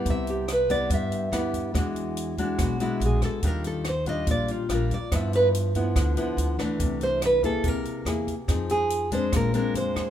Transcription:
Already playing: G3 B3 E4
0.06 C2 C3, kick, closed hi-hat
0.10 E5
0.27 G4, closed hi-hat
0.48 B4, cross-stick, closed hi-hat
0.69 G3 B3 E4 D5, kick, closed hi-hat
0.90 G2 E5, kick, closed hi-hat
1.12 closed hi-hat
1.32 D2 G3 B3 E4, cross-stick, closed hi-hat
1.53 kick, closed hi-hat
1.74 E2 E3 G#3 D4 F#4, kick, cross-stick, closed hi-hat
1.96 closed hi-hat
2.17 closed hi-hat
2.38 G#3 D4 F#4, kick, closed hi-hat
2.59 B1 B2, kick, cross-stick, closed hi-hat
2.63 F#4
2.80 G#3 D4 E4 F#4, closed hi-hat
3.00 A#1, closed hi-hat
3.05 G#4
3.22 A4, kick, cross-stick, closed hi-hat
3.43 D#2 D#3 G3 D4 F4, kick, closed hi-hat
3.47 A#4
3.64 A4, closed hi-hat
3.85 cross-stick, closed hi-hat
3.89 C5
4.06 G3 D4 F4 D#5, kick, closed hi-hat
4.27 A#1 A#2, kick, closed hi-hat
4.31 D5
4.48 F4, closed hi-hat
4.69 A#1 G3 D4 F4, cross-stick, closed hi-hat
4.74 A#4
4.91 D5, kick, closed hi-hat
5.12 G2 F3 B3 E4 E5, kick, cross-stick, closed hi-hat
5.33 B4, closed hi-hat
5.54 closed hi-hat
5.75 F3 B3 E4, kick, closed hi-hat
5.96 D2 D3, kick, cross-stick, closed hi-hat
6.17 F3 B3 E4, closed hi-hat
6.37 D2, closed hi-hat
6.59 E3 A3 D4, kick, cross-stick, closed hi-hat
6.80 C2 C3, kick, closed hi-hat
7.01 C5, closed hi-hat
7.22 B4, cross-stick, closed hi-hat
7.43 A#3 E4 G#4 A4, kick, closed hi-hat
7.64 C2 C3 A#4, kick, closed hi-hat
7.85 closed hi-hat
8.05 E2 A#3 E4 G#4, cross-stick, closed hi-hat
8.27 kick, closed hi-hat
8.48 F2 F3 C4 D#4 G#4, kick, cross-stick, closed hi-hat
8.69 G#4, closed hi-hat
8.90 closed hi-hat
9.11 G#3 C4 D4 C5, kick, closed hi-hat
9.32 A#1 A#2 A#4, kick, cross-stick, closed hi-hat
9.54 G#3 C4 D4 A#4, closed hi-hat
9.74 F2 C5, closed hi-hat
9.96 kick, cross-stick, closed hi-hat

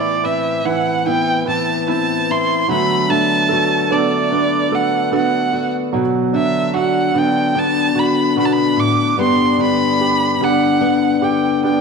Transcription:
Already playing: A2 E3 B3 E4
0.00 D5
0.24 C4 B4 E5
0.65 E3 E4 B4 F#5
1.06 B3 E4 G5
1.46 E3 B4 A5
1.87 C4 E4 B4 A5
2.31 E4 C6
2.68 D3 F#3 A3 B3 B5
2.72 F#4
3.09 A3 D4 A5
3.49 F#4 A4
3.90 A3 B3 D4 A4 D5
4.31 B3 D4
4.71 A3 A4 F#5
5.11 B3 D4 F#4 A4
5.16 F#5
5.53 F#4
5.93 B2 F#3
6.33 D3 D4 E5
6.74 D4 F#4 F#5
7.14 D3 B3 D4
7.18 G5
7.55 B3 D4
7.59 A5
7.95 D3 F#4
7.99 B5
8.36 B2 B3 D4 F#4 B5
8.45 A5
8.53 B5
8.76 A2 D6
9.17 G2 D3 B3 D4 G4
9.21 C6
9.58 D3 D4
9.63 B5
9.99 D4 G4
10.40 D3 B3 D4 G4 F#5
10.81 B3 D4
11.21 D3 G4 G5
11.63 B3 D4 G4 G5

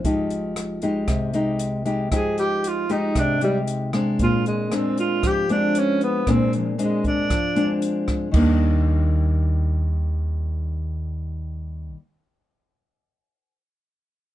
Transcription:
0.04 F1 F3 G#3 D#4 G4, kick, closed hi-hat
0.30 closed hi-hat
0.56 cross-stick, closed hi-hat
0.82 G#3 D#4 G4, closed hi-hat
1.08 C2 C3, kick, cross-stick, closed hi-hat
1.33 G#3 D#4 G4, closed hi-hat
1.59 closed hi-hat
1.85 G#3 D#4 G4, closed hi-hat
2.11 F1 F3 G#3 D#4 G4, kick, cross-stick, closed hi-hat
2.15 G#4
2.38 G4, closed hi-hat
2.64 F4, closed hi-hat
2.89 G#3 D#4 G4, closed hi-hat
3.15 C2 C3, kick, cross-stick, closed hi-hat
3.19 D4
3.41 G3 G#3 D#4 G4, closed hi-hat
3.67 closed hi-hat
3.93 G#3 C4 D4, cross-stick, closed hi-hat
4.19 A#2 F4, kick, closed hi-hat
4.46 G#3, closed hi-hat
4.71 G#3 C4 D4, cross-stick, closed hi-hat
4.97 F4, closed hi-hat
5.23 F2 F3 G4, kick, cross-stick, closed hi-hat
5.49 G#3 C4 D4, closed hi-hat
5.75 C#4, closed hi-hat
6.01 B3, closed hi-hat
6.27 A#2 G#3 C4 D4, kick, cross-stick, closed hi-hat
6.53 F3, closed hi-hat
6.78 G#3 C4 D4, closed hi-hat
6.83 G#3
7.04 D4, kick, closed hi-hat
7.30 F3, kick, cross-stick, closed hi-hat
7.56 G#3 C4 D4, closed hi-hat
7.82 closed hi-hat
8.08 kick, cross-stick, closed hi-hat
8.31 D#2 D#3 G3, kick, crash
8.36 A#3 D4

